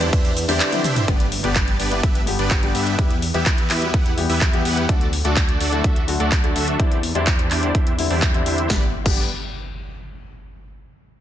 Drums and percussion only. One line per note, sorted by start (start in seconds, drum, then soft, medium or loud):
0.01 closed hi-hat soft
0.01 shaker soft
0.13 kick loud
0.13 closed hi-hat medium
0.13 ride medium
0.13 shaker soft
0.25 closed hi-hat soft
0.25 shaker soft
0.37 open hi-hat loud
0.37 shaker medium
0.49 open hi-hat medium
0.49 shaker soft
0.60 clap loud
0.60 closed hi-hat medium
0.60 ride medium
0.60 shaker soft
0.72 closed hi-hat soft
0.72 high tom medium
0.72 shaker soft
0.84 open hi-hat loud
0.84 mid tom medium
0.84 shaker medium
0.96 closed hi-hat soft
0.96 mid tom medium
0.96 shaker soft
1.08 kick loud
1.08 closed hi-hat medium
1.20 closed hi-hat soft
1.32 open hi-hat loud
1.44 closed hi-hat soft
1.56 kick loud
1.56 clap loud
1.56 closed hi-hat medium
1.68 closed hi-hat soft
1.80 open hi-hat loud
1.92 closed hi-hat soft
2.03 kick loud
2.03 closed hi-hat medium
2.15 closed hi-hat soft
2.27 open hi-hat loud
2.39 closed hi-hat soft
2.51 kick loud
2.51 clap loud
2.51 closed hi-hat medium
2.63 closed hi-hat soft
2.75 open hi-hat loud
2.87 closed hi-hat soft
2.99 kick loud
2.99 closed hi-hat medium
3.11 closed hi-hat soft
3.22 open hi-hat loud
3.34 closed hi-hat soft
3.46 kick loud
3.46 clap loud
3.46 closed hi-hat medium
3.58 closed hi-hat soft
3.70 clap medium
3.70 open hi-hat loud
3.82 closed hi-hat soft
3.94 kick loud
3.94 closed hi-hat medium
4.06 closed hi-hat soft
4.18 open hi-hat loud
4.30 open hi-hat medium
4.41 kick loud
4.41 clap loud
4.53 closed hi-hat soft
4.65 open hi-hat loud
4.77 closed hi-hat soft
4.89 kick loud
4.89 closed hi-hat medium
5.01 closed hi-hat soft
5.13 open hi-hat loud
5.25 closed hi-hat soft
5.36 kick loud
5.36 clap loud
5.36 closed hi-hat medium
5.49 closed hi-hat soft
5.61 open hi-hat loud
5.72 closed hi-hat soft
5.84 kick loud
5.84 closed hi-hat medium
5.96 closed hi-hat soft
6.08 open hi-hat loud
6.20 closed hi-hat soft
6.32 kick loud
6.32 clap loud
6.32 closed hi-hat medium
6.44 closed hi-hat soft
6.56 open hi-hat loud
6.68 closed hi-hat soft
6.80 kick loud
6.80 closed hi-hat medium
6.92 closed hi-hat soft
7.03 open hi-hat loud
7.15 closed hi-hat soft
7.27 kick loud
7.27 clap loud
7.27 closed hi-hat medium
7.39 closed hi-hat soft
7.51 clap medium
7.51 open hi-hat loud
7.63 closed hi-hat soft
7.75 kick loud
7.75 closed hi-hat medium
7.87 closed hi-hat soft
7.99 open hi-hat loud
8.11 open hi-hat medium
8.22 kick loud
8.22 clap loud
8.34 closed hi-hat soft
8.46 open hi-hat loud
8.58 closed hi-hat soft
8.70 kick loud
8.70 snare medium
9.06 kick loud
9.06 crash medium